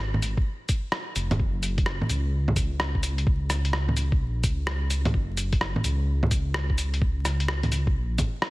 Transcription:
Already playing: detuned saw bass G#1
0.14 low bongo
0.22 detuned saw bass G#1, closed hi-hat, cabasa
0.37 kick
0.69 kick, closed hi-hat, cabasa
0.92 cross-stick
1.16 detuned saw bass F1, closed hi-hat, cabasa
1.31 closed hi-hat, low bongo
1.39 detuned saw bass F#1, kick
1.63 closed hi-hat, cabasa
1.78 kick, closed hi-hat
1.86 cross-stick
2.01 low bongo
2.09 detuned saw bass C#2, closed hi-hat, cabasa
2.48 low bongo
2.56 kick, closed hi-hat, cabasa
2.80 cross-stick
2.95 kick
3.03 closed hi-hat, cabasa
3.18 closed hi-hat
3.27 kick
3.50 cross-stick, closed hi-hat, cabasa
3.65 closed hi-hat
3.73 cross-stick
3.88 low bongo
3.97 detuned saw bass C#2, closed hi-hat, cabasa
4.12 kick
4.20 detuned saw bass A#1
4.44 detuned saw bass C#2, kick, closed hi-hat, cabasa
4.67 cross-stick
4.91 closed hi-hat, cabasa
5.05 closed hi-hat, low bongo
5.14 detuned saw bass F#1, kick
5.37 closed hi-hat, cabasa
5.53 kick, closed hi-hat
5.61 cross-stick
5.76 low bongo
5.84 detuned saw bass C#2, closed hi-hat, cabasa
6.23 low bongo
6.31 kick, closed hi-hat, cabasa
6.54 cross-stick
6.70 kick
6.78 closed hi-hat, cabasa
6.94 closed hi-hat
7.02 kick
7.25 cross-stick, closed hi-hat, cabasa
7.40 closed hi-hat
7.48 cross-stick
7.63 closed hi-hat, low bongo
7.72 detuned saw bass C#2, closed hi-hat, cabasa
7.87 kick
7.95 detuned saw bass A#1
8.18 kick, closed hi-hat, low bongo, cabasa
8.42 cross-stick

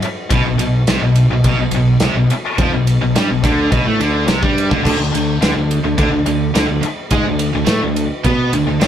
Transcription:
0.02 muted fingered electric bass stroke, muted distorted electric guitar stroke, ride
0.30 fingered electric bass B1, distorted electric guitar B2, kick, ride
0.45 fingered electric bass B1, distorted electric guitar B2
0.59 fingered electric bass B1, distorted electric guitar B2, ride
0.87 fingered electric bass C2, distorted electric guitar C3, snare, ride
1.02 fingered electric bass B1, distorted electric guitar B2
1.16 ride
1.29 fingered electric bass B1, distorted electric guitar B2
1.44 fingered electric bass B1, distorted electric guitar B2, kick, ride
1.59 fingered electric bass B1, distorted electric guitar B2
1.71 fingered electric bass B1, ride
1.76 distorted electric guitar B2
2.00 fingered electric bass C2, snare, ride
2.04 distorted electric guitar C3
2.14 fingered electric bass B1, distorted electric guitar B2
2.30 muted distorted electric guitar stroke, ride
2.58 fingered electric bass F2, distorted electric guitar F3, kick, ride
2.73 fingered electric bass B1, distorted electric guitar B2
2.87 ride
3.02 fingered electric bass B1, distorted electric guitar B2
3.16 fingered electric bass G2, distorted electric guitar G3, snare, ride
3.30 fingered electric bass B1, distorted electric guitar B2
3.43 fingered electric bass D2, distorted electric guitar D3, kick, ride
3.72 fingered electric bass B1, distorted electric guitar B2, kick, ride
3.87 fingered electric bass A2, distorted electric guitar A3
4.00 fingered electric bass D2, distorted electric guitar D3, ride
4.28 fingered electric bass C2, distorted electric guitar C3, snare, ride
4.42 fingered electric bass G2, distorted electric guitar G3, kick
4.58 ride
4.69 fingered electric bass D2, distorted electric guitar D3, kick
4.84 fingered electric bass D2, distorted electric guitar D3, kick, crash
4.98 fingered electric bass D2, distorted electric guitar D3
5.14 fingered electric bass D2, distorted electric guitar D3, ride
5.42 fingered electric bass D2, distorted electric guitar D3, snare, ride
5.56 fingered electric bass D2, distorted electric guitar D3
5.71 ride
5.84 fingered electric bass D2, distorted electric guitar D3
5.98 fingered electric bass D2, distorted electric guitar D3, kick, ride
6.11 fingered electric bass D2, distorted electric guitar D3
6.26 fingered electric bass D2, distorted electric guitar D3, ride
6.54 fingered electric bass D2, distorted electric guitar D3, snare, ride
6.67 fingered electric bass D2, distorted electric guitar D3
6.81 muted distorted electric guitar stroke, muted fingered electric bass stroke, ride
7.11 fingered electric bass G#2, distorted electric guitar G#3, kick, ride
7.25 fingered electric bass D2, distorted electric guitar D3
7.39 ride
7.53 fingered electric bass D2, distorted electric guitar D3
7.65 fingered electric bass A2, distorted electric guitar A3, snare, ride
7.70 distorted electric guitar A3
7.81 fingered electric bass D2, distorted electric guitar D3
7.96 ride
8.24 fingered electric bass B2, distorted electric guitar B3, kick, ride
8.53 fingered electric bass D2, distorted electric guitar D3, ride
8.67 fingered electric bass D2, distorted electric guitar D3
8.80 fingered electric bass D2, distorted electric guitar D3, snare, ride

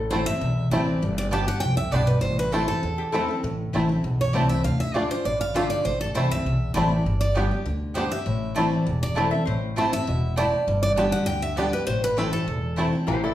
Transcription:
Already playing: upright bass A1, steel-string acoustic guitar A2
0.10 steel-string acoustic guitar E3 A3 C4 E4 C5, five-string banjo A3 E4, mandolin C4 E4 C5 A5
0.26 steel-string acoustic guitar C4 E4 E5
0.41 upright bass B1, steel-string acoustic guitar E2
0.71 upright bass A1, steel-string acoustic guitar E3 A3 C4 E4 D5, five-string banjo A3 E4, mandolin C4 E4 C5 A5
1.02 upright bass G1, steel-string acoustic guitar G2
1.18 steel-string acoustic guitar D5
1.31 steel-string acoustic guitar D3 G3 B3 G4 A5, mandolin B3 G4 D5 G5, five-string banjo B3 D4 G4
1.47 steel-string acoustic guitar B3 G4 F#5
1.60 upright bass C2, steel-string acoustic guitar F2 G5
1.77 steel-string acoustic guitar E5
1.91 upright bass B1, steel-string acoustic guitar G2 D5, mandolin B3 G4 D5 G5, five-string banjo B3 D4 G4
2.07 steel-string acoustic guitar B4
2.21 upright bass A1, steel-string acoustic guitar A2 C5
2.39 steel-string acoustic guitar B4
2.52 steel-string acoustic guitar E3 A3 C4 E4 A4, five-string banjo A3 E4, mandolin C4 E4 C5 A5
2.68 steel-string acoustic guitar A4
2.83 steel-string acoustic guitar E2, upright bass E2
2.98 resonator guitar played with a steel bar G4
3.12 steel-string acoustic guitar E3 A3 C4 E4, five-string banjo A3 E4, mandolin C4 E4 C5 A5, resonator guitar played with a steel bar A4
3.28 steel-string acoustic guitar C4 E4
3.43 upright bass A1, steel-string acoustic guitar A2
3.73 upright bass A1, steel-string acoustic guitar E3 A3 C4 E4, five-string banjo A3 E4, mandolin C4 E4 C5 A5
3.89 steel-string acoustic guitar C4 E4
4.04 upright bass B1, steel-string acoustic guitar E2
4.21 steel-string acoustic guitar C#5
4.33 upright bass C2, steel-string acoustic guitar E3 A3 C4 E4 D5, five-string banjo A3 E4, mandolin C4 E4 C5 A5
4.49 steel-string acoustic guitar E5
4.64 upright bass D2, steel-string acoustic guitar D3 F5
4.80 steel-string acoustic guitar E5
4.94 steel-string acoustic guitar D3 A3 D4 F4 D5, mandolin A3 F4 D5 A5, five-string banjo A3 D4 F4
5.10 steel-string acoustic guitar D4 F4 C5
5.25 upright bass A1, steel-string acoustic guitar A2 D5
5.41 steel-string acoustic guitar F5
5.54 steel-string acoustic guitar D3 A3 D4 F4 E5, mandolin A3 F4 D5 A5, five-string banjo A3 D4 F4
5.70 steel-string acoustic guitar D5
5.85 upright bass A1, steel-string acoustic guitar A2 C5
6.01 steel-string acoustic guitar A4
6.14 upright bass C2, steel-string acoustic guitar E3 A3 C4 E4 C5, five-string banjo A3 E4, mandolin C4 E4 C5 A5
6.31 steel-string acoustic guitar C4 E4 E5
6.45 upright bass B1, steel-string acoustic guitar E2
6.74 upright bass A1, steel-string acoustic guitar E3 A3 C4 E4 D5, five-string banjo A3 E4, mandolin C4 E4 C5 A5
6.91 steel-string acoustic guitar C4 E4
7.05 upright bass G1, steel-string acoustic guitar G2
7.21 steel-string acoustic guitar D5
7.34 steel-string acoustic guitar D3 G3 B3 G4, mandolin B3 G4 D5 G5, five-string banjo B3 D4 G4
7.51 steel-string acoustic guitar B3 G4
7.66 upright bass D2, steel-string acoustic guitar D3
7.94 steel-string acoustic guitar D3 G3 B3 G4 C5, mandolin B3 G4 D5 G5, five-string banjo B3 D4 G4
8.11 steel-string acoustic guitar B3 G4 E5
8.26 upright bass A1, steel-string acoustic guitar A2
8.55 steel-string acoustic guitar E3 A3 C4 E4 D5, five-string banjo A3 E4, mandolin C4 E4 C5 A5
8.87 upright bass E1, steel-string acoustic guitar E2
9.03 steel-string acoustic guitar D5
9.15 steel-string acoustic guitar E3 A3 C4 E4, five-string banjo A3 E4, mandolin C4 E4 C5 A5, resonator guitar played with a steel bar A4
9.31 steel-string acoustic guitar C4 E4, resonator guitar played with a steel bar E5
9.45 upright bass A1, steel-string acoustic guitar A2, resonator guitar played with a steel bar C5
9.76 steel-string acoustic guitar E3 A3 C4 E4 C5, five-string banjo A3 E4, mandolin C4 E4 C5 A5
9.92 steel-string acoustic guitar C4 E4 E5
10.07 upright bass E1, steel-string acoustic guitar B2
10.36 steel-string acoustic guitar A2 D5, five-string banjo A3 E4, mandolin C4 E4 C5 A5
10.67 upright bass G1, steel-string acoustic guitar G2
10.83 steel-string acoustic guitar D5
10.96 steel-string acoustic guitar D3 G3 B3 G4 A5, mandolin B3 G4 D5 G5, five-string banjo B3 D4 G4
11.12 steel-string acoustic guitar F#5
11.26 upright bass D2, steel-string acoustic guitar D3 G5
11.42 steel-string acoustic guitar E5
11.56 steel-string acoustic guitar D3 G3 B3 G4 D5, mandolin B3 G4 D5 G5, five-string banjo B3 D4 G4
11.73 steel-string acoustic guitar B3 G4 B4
11.87 upright bass A1, steel-string acoustic guitar A2 C5
12.04 steel-string acoustic guitar B4
12.17 steel-string acoustic guitar E3 A3 C4 E4 A4, five-string banjo A3 E4, mandolin C4 E4 C5 A5
12.33 steel-string acoustic guitar A4
12.47 upright bass E1
12.76 steel-string acoustic guitar E3 A3 C4 E4, five-string banjo A3 E4, mandolin C4 E4 C5 A5
12.93 steel-string acoustic guitar C4 E4
13.07 upright bass A1, steel-string acoustic guitar A2, five-string banjo E3, resonator guitar played with a steel bar G4 C5
13.24 five-string banjo E4, resonator guitar played with a steel bar A4 D5

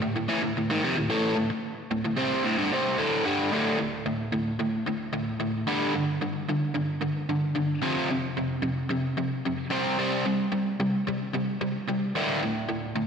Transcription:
0.02 overdriven electric guitar D2 A2
0.16 overdriven electric guitar D2 A2
0.28 overdriven electric guitar A2 E3
0.43 overdriven electric guitar D2 A2
0.57 overdriven electric guitar D2 A2
0.70 overdriven electric guitar G#2 D#3
0.84 overdriven electric guitar F2 C3
0.97 overdriven electric guitar D2 A2
1.10 overdriven electric guitar A2 E3 A3
1.35 overdriven electric guitar D2 A2
1.50 muted overdriven electric guitar stroke
1.91 overdriven electric guitar D2 A2
2.05 overdriven electric guitar D2 A2
2.17 overdriven electric guitar C3 G3 C4
2.44 overdriven electric guitar D2 A2
2.58 overdriven electric guitar G2 D3
2.73 overdriven electric guitar C3 G3 C4
2.97 overdriven electric guitar D2 A2 D3
3.25 overdriven electric guitar G2 D3 G3
3.51 overdriven electric guitar D2 A2 D3
3.78 overdriven electric guitar D2 A2
4.06 overdriven electric guitar D2 A2
4.32 overdriven electric guitar D2 A2
4.59 overdriven electric guitar D2 A2
4.86 overdriven electric guitar D2 A2
5.13 overdriven electric guitar D2 A2
5.40 overdriven electric guitar D2 A2
5.67 overdriven electric guitar G2 D3 G3
5.94 overdriven electric guitar G2 D3
6.22 overdriven electric guitar G2 D3
6.49 overdriven electric guitar G2 D3
6.75 overdriven electric guitar G2 D3
7.02 overdriven electric guitar G2 D3
7.29 overdriven electric guitar G2 D3
7.55 overdriven electric guitar G2 D3
7.82 overdriven electric guitar F2 C3 F3
8.10 overdriven electric guitar F2 C3
8.37 overdriven electric guitar F2 C3
8.62 overdriven electric guitar F2 C3
8.89 overdriven electric guitar F2 C3
9.17 overdriven electric guitar F2 C3
9.45 overdriven electric guitar F2 C3
9.70 overdriven electric guitar C3 G3 C4
9.99 overdriven electric guitar C3 G3 C4
10.25 overdriven electric guitar C3 G3
10.52 overdriven electric guitar C3 G3
10.80 overdriven electric guitar C3 G3
11.07 overdriven electric guitar C3 G3
11.33 overdriven electric guitar C3 G3
11.61 overdriven electric guitar C3 G3
11.88 overdriven electric guitar C3 G3
12.15 overdriven electric guitar D2 A2 D3
12.42 overdriven electric guitar D2 A2
12.69 overdriven electric guitar D2 A2
12.96 overdriven electric guitar D2 A2

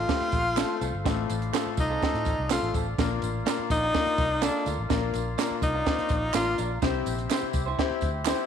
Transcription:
Already playing: tenor saxophone F4, tonewheel organ F4 A4 C5 F5
0.08 grand piano A3 C4 F4 G4, kick, snare, closed hi-hat, tambourine
0.21 muted fingered electric bass stroke, snare
0.32 fingered electric bass A#1, kick, closed hi-hat, tambourine
0.56 grand piano A3 C4 F4 A4, clean electric guitar C4 F4 A4, snare, clap, closed hi-hat, tambourine
0.81 fingered electric bass C2, clean electric guitar C4 F4 A4, closed hi-hat, tambourine
0.93 fingered electric bass G1
1.04 fingered electric bass A1, grand piano A2 A3 C4 F4 A4, tonewheel organ D5, kick, snare, closed hi-hat, tambourine
1.30 fingered electric bass A1, closed hi-hat, tambourine
1.42 closed hi-hat
1.53 grand piano A3 C4 F4 A4, clean electric guitar C4 F4 A4, snare, clap, closed hi-hat, tambourine
1.66 muted fingered electric bass stroke
1.77 fingered electric bass C2, tenor saxophone D#4, kick, closed hi-hat, tambourine
1.90 clean electric guitar C4 F4 A4
2.01 grand piano A3 C4 F4 A4, kick, snare, closed hi-hat, tambourine
2.14 fingered electric bass A2, snare, closed hi-hat
2.25 fingered electric bass A1, kick, closed hi-hat, tambourine
2.38 fingered electric bass C2
2.50 grand piano A3 C4 F4 A4, clean electric guitar C4 F4 A4, tenor saxophone F4, snare, clap, closed hi-hat, tambourine
2.62 fingered electric bass A1
2.74 fingered electric bass A1, clean electric guitar C4 F4 A4, kick, closed hi-hat, tambourine
2.98 fingered electric bass A#1, grand piano A#2 A#3 D4 F4 A#4, tonewheel organ A#4 F5, kick, snare, closed hi-hat, tambourine
3.22 fingered electric bass A1, closed hi-hat, tambourine
3.46 grand piano A#3 D4 F4 A#4, clean electric guitar D4 F4 A#4, snare, clap, closed hi-hat, tambourine
3.59 muted fingered electric bass stroke
3.70 fingered electric bass A#1, tenor saxophone D#4, kick, closed hi-hat, tambourine
3.82 clean electric guitar D4 F4 A#4
3.94 grand piano A#3 D4 F4 A#4, kick, snare, closed hi-hat, tambourine
4.07 muted fingered electric bass stroke, snare, closed hi-hat
4.18 fingered electric bass C2, kick, closed hi-hat, tambourine
4.42 grand piano A#3 D4 F4 A4, clean electric guitar D4 F4 A#4, tenor saxophone D4, snare, clap, closed hi-hat, tambourine
4.66 fingered electric bass D2, clean electric guitar D4 F4 A#4, closed hi-hat, tambourine
4.79 fingered electric bass A1
4.89 fingered electric bass A#1, grand piano A#2 A#3 D4 F4 A#4, kick, snare, closed hi-hat, tambourine
5.14 fingered electric bass A#1, closed hi-hat, tambourine
5.38 grand piano A#3 D4 F4 A#4, clean electric guitar D4 F4 A#4, snare, clap, closed hi-hat, tambourine
5.51 muted fingered electric bass stroke
5.62 fingered electric bass C2, tenor saxophone D#4, kick, closed hi-hat, tambourine
5.74 clean electric guitar D4 F4 A#4
5.86 grand piano A#3 D4 F4 C5, kick, snare, closed hi-hat, tambourine
5.99 muted fingered electric bass stroke, snare, closed hi-hat
6.09 fingered electric bass A#1, kick, closed hi-hat, tambourine
6.34 fingered electric bass A1, grand piano A#3 D4 F4 A#4, clean electric guitar D4 F4 A#4, tenor saxophone F4, snare, clap, closed hi-hat, tambourine
6.58 fingered electric bass A#1, clean electric guitar D4 F4 A#4, closed hi-hat, tambourine
6.82 fingered electric bass C2, grand piano C3 C4 E4 G4 C5, tonewheel organ E4 G4 C5 E5, kick, snare, closed hi-hat, tambourine
7.06 fingered electric bass A#1, closed hi-hat, tambourine
7.19 closed hi-hat
7.30 grand piano C4 E4 G4 C5, clean electric guitar E4 G4 C5, snare, clap, closed hi-hat, tambourine
7.43 muted fingered electric bass stroke
7.53 fingered electric bass C2, kick, closed hi-hat, tambourine
7.66 clean electric guitar E4 G4 C5
7.78 grand piano C4 E4 G4 C5, kick, snare, closed hi-hat
7.90 muted fingered electric bass stroke, snare
8.01 fingered electric bass D2, kick, closed hi-hat, tambourine
8.25 grand piano C4 E4 G4 C5, clean electric guitar E4 G4 C5, snare, clap, closed hi-hat, tambourine

